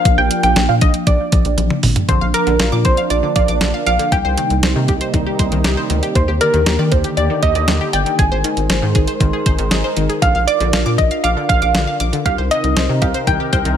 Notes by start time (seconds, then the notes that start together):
Already playing: F3 A#3 D4 F5
0.05 A#1, kick, closed hi-hat
0.18 A#1 G5
0.31 closed hi-hat
0.43 A#1 G5, closed hi-hat
0.56 A#1, snare, closed hi-hat
0.69 A#2 F5
0.81 A#1 D#5, kick, closed hi-hat
0.94 closed hi-hat
1.07 A#1 D5, kick, closed hi-hat
1.32 A#1, kick, closed hi-hat
1.45 A#1, closed hi-hat
1.58 A#1, closed hi-hat, high tom
1.70 mid tom
1.83 G#1, mid tom, open hi-hat
1.96 closed hi-hat, floor tom
2.08 A#1 D3 F3 A#3 D4 C5, kick, closed hi-hat
2.21 A#1 F5
2.34 A#4 D6, closed hi-hat
2.47 A#1 D3, closed hi-hat
2.59 A#1 F5, snare, closed hi-hat
2.72 A#2 D6
2.85 A#1 C5, kick, closed hi-hat
2.97 F5, closed hi-hat
3.10 A#1 D5 D6, closed hi-hat
3.23 D3
3.36 A#1 D5 F5, kick, closed hi-hat
3.48 A#1 D6, closed hi-hat
3.61 A#1 D3, snare, closed hi-hat
3.74 F5
3.86 A#1 F5 D6, closed hi-hat
3.99 D3, closed hi-hat
4.12 C2 C3 G3 D#4 G4 G5, kick, closed hi-hat
4.25 C2 C5
4.38 D#3, closed hi-hat
4.50 C2, closed hi-hat
4.63 C2 C5, snare, closed hi-hat
4.76 C3 D#3
4.88 C2 G4, kick, closed hi-hat
5.01 C5, closed hi-hat
5.14 C2 D#3, kick, closed hi-hat
5.27 G4
5.39 C2 C5, kick, closed hi-hat
5.52 C2 D#3, closed hi-hat
5.64 C2 G4, snare, closed hi-hat
5.77 C5
5.90 D2 D#3, closed hi-hat
6.03 G4, closed hi-hat
6.15 D#2 D3 D#3 G4 C5, kick, closed hi-hat
6.28 D#2 G4
6.41 A#4 D5, closed hi-hat
6.54 D#2 D#3, closed hi-hat
6.66 D#2 G4, snare, closed hi-hat
6.79 D#3 D5
6.92 D#2 C5, kick, closed hi-hat
7.04 G4, closed hi-hat
7.17 D#2 D5, closed hi-hat
7.30 D#3
7.43 D#2 G4 D#5, kick, closed hi-hat
7.55 D#2 D5, closed hi-hat
7.68 D#2 D#3, snare, closed hi-hat
7.81 G4
7.93 G1 D5 G5, closed hi-hat
8.06 D#3, closed hi-hat
8.19 G#1 G#3 D#4 G#4 A#4 C5 G#5, kick, closed hi-hat
8.32 G#1 C5
8.44 D#3, closed hi-hat
8.57 G#1, closed hi-hat
8.70 G#1 C5, snare, closed hi-hat
8.82 G#2 D#3
8.95 G#1 G#4, kick, closed hi-hat
9.08 C5, closed hi-hat
9.20 G#1 D#3, kick, closed hi-hat
9.33 G#4
9.46 G#1 C5, kick, closed hi-hat
9.59 G#1 D#3, closed hi-hat
9.71 G#1 G#4, snare, closed hi-hat
9.84 C5
9.97 G#1 D#3, closed hi-hat
10.09 G#4, closed hi-hat
10.22 A#1 D3 D4 F4 F5, kick, closed hi-hat
10.35 A#1 F5
10.47 D5 D6, closed hi-hat
10.60 A#1 D3, closed hi-hat
10.73 A#1 F5, snare, closed hi-hat
10.86 A#2 D6
10.98 A#1 D#5, kick, closed hi-hat
11.11 F5, closed hi-hat
11.24 A#1 F5 D6, closed hi-hat
11.37 D3
11.49 A#1 F5, kick, closed hi-hat
11.62 A#1 D6, closed hi-hat
11.75 A#1 D3, snare, closed hi-hat
11.87 F5
12.00 A#1 D6, closed hi-hat
12.13 D3, closed hi-hat
12.26 C2 C3 C4 D#4 G4 A#4 F5, kick, closed hi-hat
12.38 C2 C5
12.51 D#3 D#5, closed hi-hat
12.64 C2, closed hi-hat
12.76 C2 C5, snare, closed hi-hat
12.89 C3 D#3
13.02 C2 G4 F5, kick, closed hi-hat
13.14 C5, closed hi-hat
13.27 C2 D#3 G5, kick, closed hi-hat
13.40 G4
13.53 C2 C5 G5, kick, closed hi-hat
13.65 C2 D#3, closed hi-hat